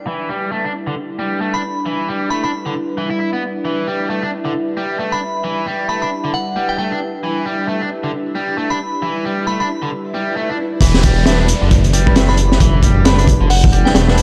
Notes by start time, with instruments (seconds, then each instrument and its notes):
Already playing: analog synth pad G3 D4 E4 B4 D5
0.07 overdriven electric guitar E3
0.29 overdriven electric guitar G3
0.52 overdriven electric guitar A3
0.64 overdriven electric guitar D4
0.87 overdriven electric guitar D3
1.19 overdriven electric guitar G3
1.41 overdriven electric guitar A3
1.54 overdriven electric guitar D4, synth bell B5
1.86 overdriven electric guitar E3
2.08 overdriven electric guitar G3
2.30 overdriven electric guitar A3, synth bell B5
2.43 overdriven electric guitar D4, synth bell B5
2.66 overdriven electric guitar D3
2.98 overdriven electric guitar E3
3.10 overdriven electric guitar E4
3.20 overdriven electric guitar E4
3.33 overdriven electric guitar B3
3.65 overdriven electric guitar E3, analog synth pad E5
3.87 overdriven electric guitar G3
4.10 overdriven electric guitar A3
4.22 overdriven electric guitar D4
4.45 overdriven electric guitar D3
4.77 overdriven electric guitar G3
4.99 overdriven electric guitar A3
5.12 overdriven electric guitar D4, synth bell B5
5.44 overdriven electric guitar E3
5.67 overdriven electric guitar G3
5.89 overdriven electric guitar A3, synth bell B5
6.02 overdriven electric guitar D4, synth bell B5
6.24 overdriven electric guitar D3
6.34 synth bell F#5
6.56 overdriven electric guitar G3
6.69 synth bell G5
6.78 overdriven electric guitar A3, synth bell G5
6.91 overdriven electric guitar D4
7.23 overdriven electric guitar E3
7.46 overdriven electric guitar G3
7.68 overdriven electric guitar A3
7.81 overdriven electric guitar D4
8.04 overdriven electric guitar D3
8.35 overdriven electric guitar G3
8.58 overdriven electric guitar A3
8.70 overdriven electric guitar D4, synth bell B5
9.02 overdriven electric guitar E3
9.25 overdriven electric guitar G3
9.47 overdriven electric guitar A3, synth bell B5
9.60 overdriven electric guitar D4, synth bell B5
9.82 overdriven electric guitar D3
9.92 swell
10.14 overdriven electric guitar G3
10.36 overdriven electric guitar A3
10.49 overdriven electric guitar D4
10.81 detuned saw bass E1, overdriven electric guitar E3, analog synth pad G3 D4 E4 B4 D5, kick, closed hi-hat, downlifter
10.94 snare
11.03 overdriven electric guitar G3, kick, closed hi-hat
11.26 string section G3 D4 E4 B4, overdriven electric guitar A3, snare, closed hi-hat
11.39 overdriven electric guitar D4
11.48 closed hi-hat
11.62 detuned saw bass F#1, overdriven electric guitar D3
11.71 kick, closed hi-hat
11.84 closed hi-hat
11.93 overdriven electric guitar G3, closed hi-hat
12.06 string section G3 D4 E4 B4, kick
12.16 overdriven electric guitar A3, snare, closed hi-hat
12.29 overdriven electric guitar D4, synth bell B5, snare
12.37 closed hi-hat
12.52 snare
12.60 overdriven electric guitar E3, kick, closed hi-hat
12.83 overdriven electric guitar G3, kick, closed hi-hat
13.05 string section G3 D4 E4 B4, overdriven electric guitar A3, synth bell B5, snare, closed hi-hat
13.18 overdriven electric guitar D4, synth bell B5, closed hi-hat
13.28 kick, closed hi-hat
13.41 detuned saw bass F#1, overdriven electric guitar D3
13.50 synth bell F#5, open hi-hat
13.64 kick
13.73 overdriven electric guitar G3, closed hi-hat
13.85 detuned saw bass E1, string section G3 D4 E4 B4, synth bell G5, snare
13.95 detuned saw bass E1, overdriven electric guitar A3, synth bell G5, snare, closed hi-hat
14.08 string section G3 D4 E4 B4, overdriven electric guitar D4, snare
14.18 closed hi-hat